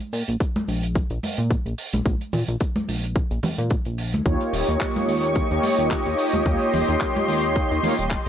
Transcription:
0.00 closed hi-hat
0.13 analog synth bass A#2, open hi-hat, shaker
0.28 analog synth bass A#1, closed hi-hat, shaker
0.40 kick, closed hi-hat, shaker
0.55 closed hi-hat, high conga, shaker
0.68 analog synth bass A#1, open hi-hat, shaker
0.83 closed hi-hat, shaker
0.95 kick, closed hi-hat, shaker
1.10 analog synth bass A#1, closed hi-hat, shaker
1.23 open hi-hat, high conga, shaker
1.38 analog synth bass A#2, closed hi-hat, shaker
1.50 kick, closed hi-hat, shaker
1.66 analog synth bass A#1, closed hi-hat
1.78 open hi-hat, shaker
1.93 analog synth bass A#1, closed hi-hat, high conga, shaker
2.06 analog synth bass A#1, kick, closed hi-hat, shaker
2.21 closed hi-hat
2.33 analog synth bass A#2, open hi-hat, low conga, shaker
2.48 analog synth bass A#1, closed hi-hat, shaker
2.60 kick, closed hi-hat, shaker
2.76 closed hi-hat, high conga, shaker
2.88 analog synth bass A#1, open hi-hat, shaker
3.03 closed hi-hat, shaker
3.15 kick, closed hi-hat, shaker
3.31 analog synth bass A#1, closed hi-hat, shaker
3.43 open hi-hat, high conga, low conga, shaker
3.58 analog synth bass A#2, closed hi-hat, shaker
3.70 kick, closed hi-hat, shaker
3.85 analog synth bass A#1, closed hi-hat, shaker
3.98 open hi-hat, shaker
4.13 analog synth bass D#2, closed hi-hat, high conga, shaker
4.25 analog synth bass D#2, analog polysynth A#3 D#4 F4 G4 C#5, analog synth pad G4 D#5 C#6, kick, closed hi-hat, shaker
4.41 closed hi-hat
4.53 analog synth bass D#1, open hi-hat, shaker
4.68 analog synth bass D#2, closed hi-hat, shaker
4.80 kick, clap, closed hi-hat, shaker
4.96 closed hi-hat, high conga, shaker
5.08 analog synth bass D#2, open hi-hat, shaker
5.24 closed hi-hat, shaker
5.35 kick, closed hi-hat, shaker
5.50 analog synth bass D#2, analog polysynth A#3 D#4 F4 G4 C#5, closed hi-hat, shaker
5.63 open hi-hat, high conga, shaker
5.78 analog synth bass D#1, closed hi-hat, shaker
5.91 kick, clap, closed hi-hat, shaker
6.06 analog synth bass D#2, closed hi-hat
6.18 open hi-hat, shaker
6.34 analog synth bass D#2, closed hi-hat, high conga, shaker
6.45 analog synth bass D#2, analog polysynth A#3 D#4 F4 G4 C#5, analog synth pad C6, kick, closed hi-hat, shaker
6.61 closed hi-hat
6.73 analog synth bass D#1, open hi-hat, low conga, shaker
6.89 analog synth bass D#2, closed hi-hat, shaker
7.00 kick, clap, closed hi-hat, shaker
7.15 closed hi-hat, high conga, shaker
7.29 analog synth bass D#2, open hi-hat, shaker
7.43 closed hi-hat, shaker
7.56 kick, closed hi-hat, shaker
7.71 analog synth bass D#2, closed hi-hat, shaker
7.83 analog polysynth A#3 D#4 F4 G4 C#5, open hi-hat, high conga, low conga, shaker
7.99 analog synth bass D#1, closed hi-hat, shaker
8.10 kick, clap, closed hi-hat, shaker

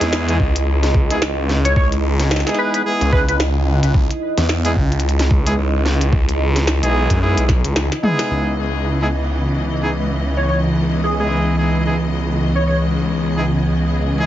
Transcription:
Already playing: horn section G#3 B3 D#4 E4 G#4, ambient pad E4 D#5 B5
0.01 detuned saw bass E2, snare, closed hi-hat
0.13 snare
0.28 horn section G#3 B3 D#4 E4 G#4, closed hi-hat
0.40 detuned saw bass C#2, kick
0.56 closed hi-hat
0.83 snare, closed hi-hat
0.94 kick
1.10 horn section G#3 B3 D#4 E4 G#4, closed hi-hat
1.22 detuned saw bass C#2, snare
1.49 snare
1.65 analog synth lead C#5, closed hi-hat
1.76 detuned saw bass C#2, analog synth lead C#5, kick
1.92 detuned saw bass C#2, closed hi-hat
2.20 snare, closed hi-hat
2.31 snare
2.36 snare
2.40 snare
2.47 horn section G#3 B3 D#4 E4 G#4, snare, closed hi-hat
2.49 snare
2.54 analog synth lead B4, snare
2.74 analog synth lead B4, closed hi-hat
2.86 horn section G#3 B3 D#4 E4 G#4
3.01 detuned saw bass C#2, closed hi-hat
3.12 horn section G#3 B3 D#4 E4 G#4, analog synth lead B4, kick
3.29 analog synth lead B4, closed hi-hat
3.40 snare
3.83 detuned saw bass C#2, closed hi-hat
3.94 detuned saw bass C#2, kick
4.11 closed hi-hat
4.37 detuned saw bass E2, snare, closed hi-hat
4.49 snare
4.65 horn section G#3 B3 D#4 E4 G#4, closed hi-hat
4.76 detuned saw bass C#2, kick
4.92 closed hi-hat
5.00 closed hi-hat
5.09 closed hi-hat
5.19 snare, closed hi-hat
5.31 kick
5.47 horn section G#3 B3 D#4 E4 G#4, closed hi-hat
5.58 detuned saw bass C#2
5.86 snare
6.01 closed hi-hat
6.13 detuned saw bass C#2, kick
6.28 detuned saw bass C#2, closed hi-hat
6.56 snare, closed hi-hat
6.67 snare
6.83 detuned saw bass B1, horn section G#3 B3 D#4 E4 G#4, closed hi-hat
7.10 detuned saw bass F#2, kick, closed hi-hat
7.22 horn section G#3 B3 D#4 E4 G#4
7.37 detuned saw bass B1, closed hi-hat
7.49 kick, snare
7.65 detuned saw bass C#2, closed hi-hat
7.76 detuned saw bass C#2, snare
7.92 snare, closed hi-hat
8.03 horn section G#3 B3 D#4 E4 G#4, mid tom
8.19 snare, closed hi-hat
8.31 detuned saw bass C#2, string section C#3 E3 B3 D#5, ambient pad E3
8.61 ambient pad B5
9.01 horn section G#3 B3 D#4 E4 G#4
9.83 horn section G#3 B3 D#4 E4 G#4
10.37 analog synth lead C#5
10.48 analog synth lead C#5
11.04 analog synth lead G#4
11.19 horn section G#3 B3 D#4 E4 G#4, analog synth lead G#4
11.58 horn section G#3 B3 D#4 E4 G#4
11.85 horn section G#3 B3 D#4 E4 G#4
12.55 analog synth lead C#5
12.67 string section G#4, analog synth lead C#5
13.37 horn section G#3 B3 D#4 E4 G#4
14.20 horn section G#3 B3 D#4 E4 G#4

